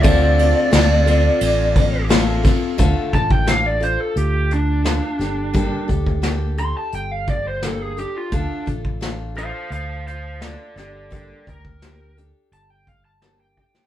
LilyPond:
<<
  \new Staff \with { instrumentName = "Lead electric guitar" } { \time 4/4 \key d \minor \tempo 4 = 86 d''2. r4 | r8 a''16 g''16 f''16 d''16 c''16 a'16 g'8 d'4.~ | d'8 r4 c'''16 a''16 g''16 f''16 d''16 c''16 a'16 gis'16 g'16 f'16 | d'8 r4 <c'' f''>8 <c'' f''>8 <c'' f''>8 <a' d''>8 <a' d''>8 |
<a' d''>8 bes'4 r8 a''16 g''16 f''16 a''16 a''16 g''16 g''8 | }
  \new Staff \with { instrumentName = "Steel-string acoustic guitar" } { \time 4/4 \key d \minor <d a c' f' a'>4 <a c' f' a'>8 <c' f' a'>4. <a c' f' a'>8 <c' f' a'>8 | <d a d' f' a'>8 <d' f' a'>8 <a d' f' a'>8 <d' f' a'>4. <a d' f' a'>8 <d' g' a'>8 | <g bes d' g' a'>8 <d' g' a'>8 <bes d' g' a'>8 <d' g' a'>4. <bes d' g' a'>8 <d' g' a'>8 | <d a d' f' a'>8 <d' f' a'>8 <a d' f' a'>8 <d' f' a'>4. <a d' f' a'>8 <d' g' a'>8 |
<g bes d' g' a'>8 <d' g'>8 <bes d' g'>8 <d' g' a'>4. <bes d' g' a'>8 <d' g' a'>8 | }
  \new Staff \with { instrumentName = "String section" } { \time 4/4 \key d \minor <c' d' f'>1 | r1 | r1 | r1 |
r1 | }
  \new Staff \with { instrumentName = "Fingered electric bass" } { \clef bass \time 4/4 \key d \minor d,4 d,4 a,,2 | d,16 r16 a,,4. d,4. g,,8~ | g,,8 d,4. g,,2 | d,16 r16 a,,4. d,4. g,,8~ |
g,,8 d,4. g,,2 | }
  \new DrumStaff \with { instrumentName = "Drums" } \drummode { \time 4/4 <bd cymr>8 cymr8 <cymr sn>8 cymr8 cymr8 <bd cymr>8 <cymr sn>8 <bd cymr sn>8 | <hh bd>8 <hh bd>16 bd16 <hh sn>8 hh8 hh8 hh8 <hh sn>8 <hh sn>8 | <hh bd>8 <hh bd>16 bd16 <hh sn>8 hh8 hh8 <hh bd>8 <hh sn>8 hh8 | <hh bd>8 <hh bd>16 bd16 <hh sn>8 hh8 hh8 hh8 <hh sn>8 <hh sn>8 |
<hh bd>8 <hh bd>16 bd16 <hh sn>8 hh8 hh8 <hh bd>8 <hh sn>8 bd16 sn16 | }
>>